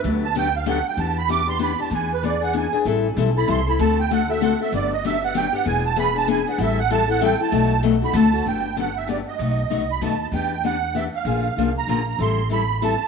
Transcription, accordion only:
X:1
M:3/4
L:1/16
Q:"Swing" 1/4=193
K:G
V:1 name="Accordion"
z2 a2 g2 =f2 ^f2 g2 | [K:Em] a2 b2 d'2 c'2 b2 a2 | ^g2 B2 d2 f2 g3 z | z6 b2 c'2 b2 |
a2 g2 f2 e2 f2 e2 | d2 ^d2 e2 f2 g2 f2 | ^g2 a2 b2 a2 g2 f2 | e2 f2 a2 f2 g2 a2- |
a4 z2 b2 a4 | [K:G] g4 f2 e2 d2 _e2- | _e6 b2 a2 a2 | g2 g2 f4 e2 =f2- |
=f6 _b4 b2 | c'4 b4 a4 |]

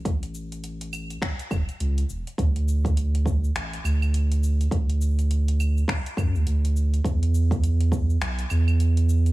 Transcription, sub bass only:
X:1
M:4/4
L:1/16
Q:"Swing 16ths" 1/4=103
K:D
V:1 name="Sub bass" clef=bass
A,,,8 z2 E,,, z C,, z E,,, z | D,,8 A,,, z D,,6 | D,,8 z2 F,, D,, D,,4 | E,,8 B,,, z E,,6 |]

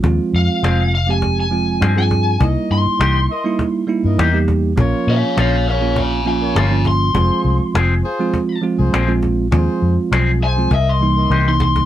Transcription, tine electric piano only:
X:1
M:4/4
L:1/16
Q:"Swing 16ths" 1/4=101
K:Fm
V:1 name="Tine electric piano"
[F,A,CF]6 z [F,A,CG]3 [F,A,CF]3 [F,CFA]3 | [G,B,^D=E]6 z [G,B,DE]3 [G,B,DE]3 [G,B,DG]3 | [F,B,DF]6 z [F,B,DF]3 [F,B,DF]3 [F,B,DF]3 | [F,A,CF]6 z [F,A,CF]3 [F,A,CF]3 [F,A,CF]3 |
[F,A,CF]6 z [F,A,CF] z2 [=E,G,B,^D]3 [E,G,B,D]3 |]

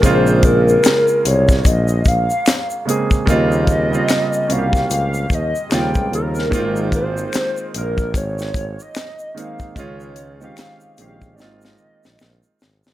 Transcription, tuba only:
X:1
M:4/4
L:1/16
Q:"Swing 16ths" 1/4=74
K:Ab
V:1 name="Tuba" clef=bass
B,,,4 z2 C,,2 B,,,2 B,,, z4 z | E,,4 z2 C,,2 D,,2 E,, z E,, D,, E,,2 | A,,,4 z2 B,,,2 A,,,2 A,,, z4 z | D,,4 z2 B,,,2 A,,,2 B,,, B,,, B,,, z A,,, G,,, |]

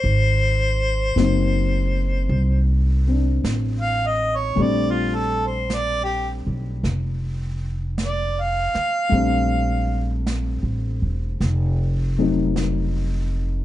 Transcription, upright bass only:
X:1
M:4/4
L:1/8
Q:"Swing" 1/4=53
K:Bb
V:1 name="Upright bass" clef=bass
_A,,,2 _G,,,2 C,,2 =A,,,2 | B,,,3 _C,, F,,,3 z | B,,,2- (3B,,, A,,, =E,,, F,,,4 |]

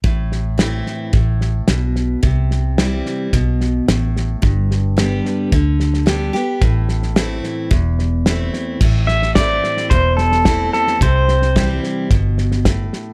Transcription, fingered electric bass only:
X:1
M:4/4
L:1/8
Q:1/4=109
K:Am
V:1 name="Fingered electric bass" clef=bass
A,,,4 A,,,2 B,,,2 | C,,4 B,,,2 A,,,2 | G,,,4 D,,4 | A,,,4 E,,,4 |
A,,,4 E,,,4 | C,,4 G,,,4 |]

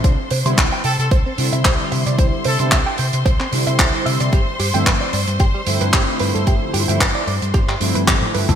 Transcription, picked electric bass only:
X:1
M:4/4
L:1/16
Q:"Swing 16ths" 1/4=112
K:C
V:1 name="Picked electric bass" clef=bass
C,, z C, C, C,, z C, C, C,, z C, C, C,, z C, C, | C,, z C, C, C,, z C, C, C,, z C, C, C,, z C, C, | G,,, z G,, G,, G,,, z G,, G,, G,,, z G,, G,, G,,, z G,, G,, | G,,, z G,, G,, G,,, z G,, G,, G,,, z G,, G,, G,,, z G,, G,, |]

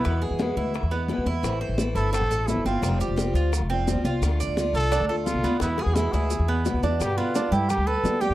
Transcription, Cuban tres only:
X:1
M:4/4
L:1/8
Q:1/4=173
K:Ephr
V:1 name="Cuban tres"
B, ^G2 E2 B,2 E- | E c2 E C A2 C | C G2 F2 C2 F- | F d2 F D A2 B, |
B, ^G2 E2 B,2 D | z B, D G2 B2 G |]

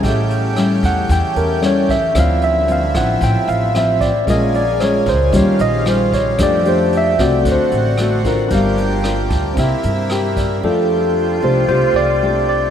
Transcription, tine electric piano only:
X:1
M:4/4
L:1/8
Q:1/4=113
K:F
V:1 name="Tine electric piano"
z3 _g =g B ^c e | f e f _g =g f e d | _e d [c_d] c d e c d | d c e d c4- |
c2 z6 | A3 c c d2 d |]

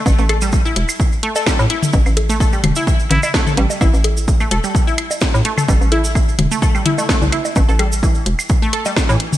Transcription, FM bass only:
X:1
M:4/4
L:1/16
Q:"Swing 16ths" 1/4=128
K:Em
V:1 name="FM bass" clef=bass
A,,, A,,,4 z E,,, z6 A,, z2 | A,,, A,,,4 z E,,, z3 A,,, z3 A,,, z | A,,, A,,,4 z E,,, z6 A,, z2 | A,,, A,,,4 z E,,, z6 C,, z2 |
A,,, A,,,4 z E,,, z6 A,, z2 |]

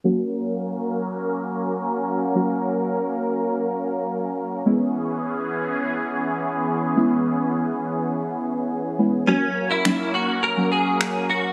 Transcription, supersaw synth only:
X:1
M:4/4
L:1/8
Q:1/4=104
K:F#mix
V:1 name="Supersaw synth"
[F,A,CA]8- | [F,A,CA]8 | [E,B,CG]8- | [E,B,CG]8 |
[F,A,CA]8 |]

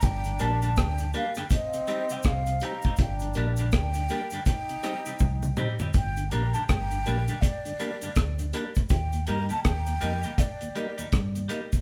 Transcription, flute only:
X:1
M:4/4
L:1/16
Q:"Swing 16ths" 1/4=81
K:Gm
V:1 name="Flute"
g2 a2 g2 f g e3 g f2 b2 | g2 z2 g4 g6 z2 | g2 b a g4 d6 z2 | g2 b a g4 d6 z2 |]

